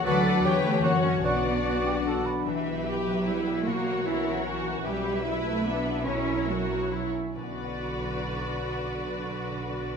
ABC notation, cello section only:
X:1
M:3/4
L:1/8
Q:1/4=148
K:Bm
V:1 name="Cello section" clef=bass
F,3 A, ^A, C | B,4 z2 | E,3 F, G,2 | ^A,2 E,3 z |
G,3 A, B,2 | C2 F,3 z | D,6- | D,6 |]